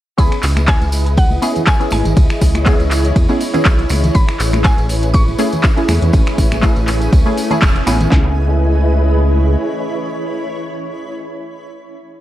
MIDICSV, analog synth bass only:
0, 0, Header, 1, 2, 480
1, 0, Start_track
1, 0, Key_signature, 4, "minor"
1, 0, Tempo, 495868
1, 178, Time_signature, 4, 2, 24, 8
1, 11815, End_track
2, 0, Start_track
2, 0, Title_t, "Analog synth bass"
2, 0, Program_c, 0, 38
2, 178, Note_on_c, 0, 37, 100
2, 284, Note_off_c, 0, 37, 0
2, 418, Note_on_c, 0, 37, 91
2, 748, Note_off_c, 0, 37, 0
2, 788, Note_on_c, 0, 37, 90
2, 1343, Note_off_c, 0, 37, 0
2, 1858, Note_on_c, 0, 32, 86
2, 1964, Note_off_c, 0, 32, 0
2, 1990, Note_on_c, 0, 32, 86
2, 2077, Note_off_c, 0, 32, 0
2, 2098, Note_on_c, 0, 37, 96
2, 2204, Note_off_c, 0, 37, 0
2, 2338, Note_on_c, 0, 37, 86
2, 2668, Note_off_c, 0, 37, 0
2, 2709, Note_on_c, 0, 37, 89
2, 3024, Note_off_c, 0, 37, 0
2, 3058, Note_on_c, 0, 40, 98
2, 3164, Note_off_c, 0, 40, 0
2, 3538, Note_on_c, 0, 35, 93
2, 3736, Note_off_c, 0, 35, 0
2, 3775, Note_on_c, 0, 37, 81
2, 3974, Note_off_c, 0, 37, 0
2, 4018, Note_on_c, 0, 33, 102
2, 4124, Note_off_c, 0, 33, 0
2, 4257, Note_on_c, 0, 33, 87
2, 4588, Note_off_c, 0, 33, 0
2, 4628, Note_on_c, 0, 33, 90
2, 5184, Note_off_c, 0, 33, 0
2, 5697, Note_on_c, 0, 40, 88
2, 5803, Note_off_c, 0, 40, 0
2, 5829, Note_on_c, 0, 40, 90
2, 5917, Note_off_c, 0, 40, 0
2, 5938, Note_on_c, 0, 33, 97
2, 6043, Note_off_c, 0, 33, 0
2, 6177, Note_on_c, 0, 33, 91
2, 6508, Note_off_c, 0, 33, 0
2, 6549, Note_on_c, 0, 33, 91
2, 6864, Note_off_c, 0, 33, 0
2, 6898, Note_on_c, 0, 37, 101
2, 7003, Note_off_c, 0, 37, 0
2, 7378, Note_on_c, 0, 28, 95
2, 7576, Note_off_c, 0, 28, 0
2, 7617, Note_on_c, 0, 33, 86
2, 7815, Note_off_c, 0, 33, 0
2, 7857, Note_on_c, 0, 37, 94
2, 9259, Note_off_c, 0, 37, 0
2, 11815, End_track
0, 0, End_of_file